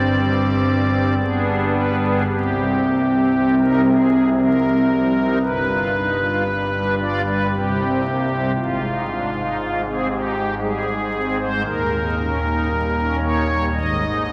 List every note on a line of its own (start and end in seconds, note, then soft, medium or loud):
0.00 1.14 G1 medium
0.00 1.14 G2 soft
0.00 1.14 G3 soft
0.00 1.14 C4 soft
0.00 1.14 D5 medium
1.19 2.23 G1 soft
1.19 2.23 G2 soft
1.19 2.23 G3 soft
1.19 2.23 B3 soft
1.19 2.23 D4 soft
1.19 1.64 G#4 medium
1.73 1.96 B4 medium
2.01 2.23 G#4 medium
2.27 5.37 C2 medium
2.27 5.38 C3 medium
2.27 3.55 G4 loud
2.54 2.77 C4 soft
2.80 3.02 A#3 soft
3.06 3.30 C4 soft
3.33 3.56 G3 medium
3.59 3.82 D#4 soft
3.59 3.81 A#4 medium
3.85 4.08 C4 medium
3.85 4.29 G#4 loud
4.11 4.34 G3 soft
4.38 4.59 F3 soft
4.38 5.38 A#4 medium
4.64 4.87 C4 medium
4.90 5.13 G3 medium
5.16 5.38 D#4 medium
5.42 7.47 G1 medium
5.42 7.47 G2 medium
5.42 6.95 B4 loud
5.68 5.91 F4 medium
5.95 6.16 D#4 soft
6.20 6.43 F4 medium
6.46 6.69 G3 medium
6.72 6.95 D4 soft
6.99 7.22 F4 medium
6.99 7.21 D5 loud
7.24 7.47 G3 medium
7.24 7.47 B4 medium
7.50 8.52 C2 medium
7.50 8.52 C3 medium
7.50 8.52 G4 loud
7.76 8.00 C4 medium
8.03 8.25 A#3 soft
8.28 8.51 C4 medium
8.55 11.63 G#1 medium
8.55 11.63 G#2 medium
8.55 9.81 F4 loud
8.80 9.04 D#4 medium
9.07 9.29 D4 soft
9.34 9.57 D#4 medium
9.59 9.82 G#3 medium
9.84 10.08 C4 medium
9.84 10.07 G#4 loud
10.10 10.34 D#4 medium
10.10 10.55 G4 loud
10.36 10.59 G#3 medium
10.61 10.84 G3 medium
10.61 11.38 G#4 loud
10.88 11.11 G#3 medium
11.14 11.37 C4 medium
11.39 11.62 G#3 medium
11.39 11.62 C5 loud
11.65 13.68 D#1 medium
11.65 13.68 D#2 medium
11.65 13.17 A#4 loud
11.91 12.15 D#4 medium
12.16 12.39 C#4 medium
12.43 12.67 D#4 medium
12.70 12.93 G3 medium
12.96 13.19 C#4 medium
13.21 13.44 D#4 medium
13.21 13.65 C#5 loud
13.48 13.69 G3 medium
13.74 14.32 G#1 medium
13.74 14.32 G#2 medium
13.74 14.32 D#5 loud
14.00 14.22 D#4 medium
14.26 14.32 D4 medium